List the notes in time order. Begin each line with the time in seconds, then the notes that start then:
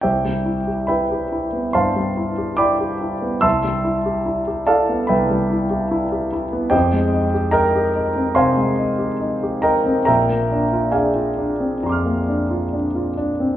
0.01 C2 G4 C5 E5 G5
0.25 G3
0.45 E4
0.67 G4
0.87 E4 B4 E5 G5 B5
1.11 G4
1.32 E4
1.53 B3
1.73 G2 C5 F5 A5 C6
1.96 G3
2.17 E4
2.38 G4
2.57 E4 D5 G5 B5 D6
2.80 G4
3.01 E4
3.22 B3
3.41 C2 E5 A5 C6 E6
3.64 G3
3.84 E4
4.06 G4
4.26 E4
4.47 G4
4.67 E4 A4 D5 F5 A5
4.89 B3
5.07 C2 B4 E5 G5 B5
5.31 G3
5.51 E4
5.70 G4
5.91 E4
6.12 G4
6.33 E4
6.53 B3
6.70 F2 G4 C5 D#5 G5
6.93 G#3
7.13 D#4
7.34 G4
7.51 D#4 A#4 D#5 G5 A#5
7.75 G4
7.95 D#4
8.16 C4
8.35 C3 C5 F5 G#5 C6
8.57 G#3
8.78 D#4
8.99 G4
9.21 D#4
9.43 G4
9.62 D#4 A#4 D#5 G5 A#5
9.85 C4
10.05 A#1 A#4 E5 G5 A#5
10.29 A#3
10.51 D4
10.73 F4
10.91 D4 G#4 D5 F5 G#5
11.16 F4
11.38 D4
11.60 C4
11.83 F2 A#5 C6
11.89 D6 F6
12.06 A#3
12.28 D4
12.51 F4
12.73 D4
12.95 F4
13.17 D4
13.40 C4